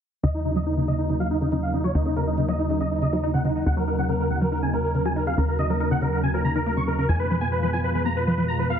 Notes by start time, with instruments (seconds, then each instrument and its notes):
0.23 analog synth bass D#2, synth arpeggio sound C#3, supersaw synth D#5
0.34 supersaw synth D#4
0.45 synth arpeggio sound C#3, supersaw synth D#4
0.56 synth arpeggio sound F#3, supersaw synth D#5
0.66 supersaw synth D#4, synth arpeggio sound D#4
0.77 synth arpeggio sound C#3, supersaw synth D#4
0.88 synth arpeggio sound C#3, supersaw synth D#5
0.98 supersaw synth D#4
1.09 synth arpeggio sound C#3, supersaw synth D#4
1.20 synth arpeggio sound F#3, supersaw synth F5
1.31 supersaw synth D#4, synth arpeggio sound D#4
1.41 synth arpeggio sound C#3, supersaw synth D#4
1.52 synth arpeggio sound C#3, supersaw synth D#4
1.63 supersaw synth F5
1.73 synth arpeggio sound C#3, supersaw synth D#4
1.84 synth arpeggio sound F#3, supersaw synth C#5
1.95 analog synth bass D#2, supersaw synth D#4, synth arpeggio sound D#4
2.05 synth arpeggio sound C#3, supersaw synth D#4
2.16 synth arpeggio sound C#3, supersaw synth A#4
2.27 supersaw synth D#4
2.37 synth arpeggio sound C#3, supersaw synth D#4
2.49 synth arpeggio sound F#3, supersaw synth D#5
2.59 supersaw synth D#4, synth arpeggio sound D#4
2.70 synth arpeggio sound C#3, supersaw synth D#4
2.80 synth arpeggio sound C#3, supersaw synth D#5
2.91 supersaw synth D#4
3.02 synth arpeggio sound C#3, supersaw synth D#5
3.12 synth arpeggio sound F#3, supersaw synth D#4
3.23 supersaw synth D#4, synth arpeggio sound D#4
3.34 synth arpeggio sound C#3, supersaw synth F#5
3.45 synth arpeggio sound C#3, supersaw synth D#4
3.55 supersaw synth D#4
3.66 analog synth bass D#2, synth arpeggio sound C#3, supersaw synth F#5
3.77 synth arpeggio sound F#3, supersaw synth A#4
3.88 synth arpeggio sound D#4, supersaw synth A#4
3.98 synth arpeggio sound C#3, supersaw synth F#5
4.09 synth arpeggio sound C#3, supersaw synth A#4
4.20 supersaw synth A#4
4.30 synth arpeggio sound C#3, supersaw synth F#5
4.41 synth arpeggio sound F#3, supersaw synth A#4
4.52 synth arpeggio sound D#4, supersaw synth A#4
4.62 synth arpeggio sound C#3, supersaw synth G#5
4.73 synth arpeggio sound C#3, supersaw synth A#4
4.84 supersaw synth A#4
4.95 synth arpeggio sound C#3, supersaw synth A#4
5.05 synth arpeggio sound F#3, supersaw synth G#5
5.16 synth arpeggio sound D#4, supersaw synth A#4
5.27 synth arpeggio sound C#3, supersaw synth F5
5.38 analog synth bass D#2, synth arpeggio sound C#3, supersaw synth A#4
5.48 supersaw synth A#4
5.59 synth arpeggio sound C#3, supersaw synth D#5
5.70 synth arpeggio sound F#3, supersaw synth A#4
5.80 synth arpeggio sound D#4, supersaw synth A#4
5.91 synth arpeggio sound C#3, supersaw synth F#5
6.02 synth arpeggio sound C#3, supersaw synth A#4
6.13 supersaw synth A#4
6.23 synth arpeggio sound C#3, supersaw synth G#5
6.34 synth arpeggio sound F#3, supersaw synth A#4
6.44 synth arpeggio sound C#3, supersaw synth A#5
6.55 synth arpeggio sound D#3, supersaw synth A#4
6.66 synth arpeggio sound A#3, supersaw synth A#4
6.77 synth arpeggio sound C#3, supersaw synth C#6
6.87 synth arpeggio sound C#3, supersaw synth A#4
6.98 synth arpeggio sound C#3, supersaw synth A#4
7.09 analog synth bass F2, synth arpeggio sound F3, supersaw synth G#5
7.19 supersaw synth B4
7.30 synth arpeggio sound F3, supersaw synth B4
7.41 synth arpeggio sound B3, supersaw synth G#5
7.52 supersaw synth B4, synth arpeggio sound B4
7.62 synth arpeggio sound F3, supersaw synth B4
7.73 synth arpeggio sound F3, supersaw synth G#5
7.84 supersaw synth B4
7.95 synth arpeggio sound F3, supersaw synth B4
8.05 synth arpeggio sound B3, supersaw synth A#5
8.16 supersaw synth B4, synth arpeggio sound B4
8.27 synth arpeggio sound F3, supersaw synth B4
8.37 synth arpeggio sound F3, supersaw synth B4
8.48 supersaw synth A#5
8.59 synth arpeggio sound F3, supersaw synth B4
8.70 synth arpeggio sound B3, supersaw synth F5